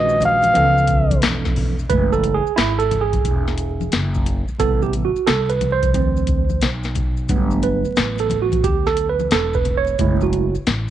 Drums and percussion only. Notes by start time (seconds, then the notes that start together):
0.09 maracas
0.21 closed hi-hat, high conga, low conga, maracas
0.42 closed hi-hat, high conga, maracas
0.55 closed hi-hat, high conga, maracas
0.78 maracas
0.88 kick, closed hi-hat, maracas
1.11 kick, closed hi-hat, high conga, maracas
1.22 snare, closed hi-hat, maracas
1.45 kick, snare, maracas
1.56 kick, open hi-hat, low conga, maracas
1.79 maracas
1.90 kick, closed hi-hat, maracas
2.13 high conga, maracas
2.24 closed hi-hat, maracas
2.47 maracas
2.58 snare, closed hi-hat, maracas
2.80 closed hi-hat, maracas
2.91 closed hi-hat, high conga, low conga, maracas
3.13 kick, closed hi-hat, high conga, maracas
3.24 kick, closed hi-hat, maracas
3.48 snare, maracas
3.58 closed hi-hat, maracas
3.81 high conga, maracas
3.92 snare, closed hi-hat, maracas
4.15 kick, maracas
4.26 closed hi-hat, low conga, maracas
4.48 maracas
4.60 kick, closed hi-hat, maracas
4.82 high conga, maracas
4.93 closed hi-hat, maracas
5.16 maracas
5.27 snare, closed hi-hat, maracas
5.49 closed hi-hat, maracas
5.61 closed hi-hat, high conga, low conga, maracas
5.83 kick, closed hi-hat, high conga, maracas
5.94 kick, closed hi-hat, maracas
6.17 maracas
6.27 kick, closed hi-hat, maracas
6.50 high conga, maracas
6.61 snare, closed hi-hat, maracas
6.83 snare, maracas
6.95 kick, closed hi-hat, low conga, maracas
7.17 maracas
7.29 kick, closed hi-hat, maracas
7.51 high conga, maracas
7.63 closed hi-hat, maracas
7.85 maracas
7.96 snare, closed hi-hat, maracas
8.18 closed hi-hat, maracas
8.30 closed hi-hat, high conga, low conga, maracas
8.52 kick, closed hi-hat, high conga, maracas
8.64 kick, closed hi-hat, maracas
8.86 snare, maracas
8.97 closed hi-hat, maracas
9.20 high conga, maracas
9.31 snare, closed hi-hat, maracas
9.53 kick, maracas
9.65 closed hi-hat, low conga, maracas
9.87 maracas
9.99 kick, closed hi-hat, maracas
10.21 high conga, maracas
10.33 closed hi-hat, maracas
10.55 maracas
10.67 snare, closed hi-hat, maracas